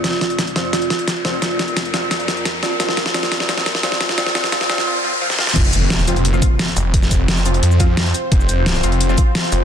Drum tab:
CC |----------------|----------------|----------------|----------------|
HH |x-xxxxx-xxxxx-x-|x-xxxxx-xxxxx-x-|x-xxxxx-xxxxx-x-|x-xxxxx---------|
SH |----------------|----------------|----------------|----------------|
SD |o-o-o-o-o-o-o-o-|o-o-o-o-o-o-o-o-|oooooooooooooooo|oooooooo-----ooo|
BD |----------------|----------------|----------------|----------------|

CC |x---------------|----------------|----------------|
HH |x-x-x-xxx-x-xxx-|x-x-x-xxx-x-xxx-|x-x-x-xxx-x-xxx-|
SH |-xx--xx--xx--xx-|-xx--xx--xx--xx-|-xx--xx--xx--xx-|
SD |----o-------o---|-o--o-------o---|----o-------o---|
BD |o---------o-----|o-o-------o-----|o---------o-----|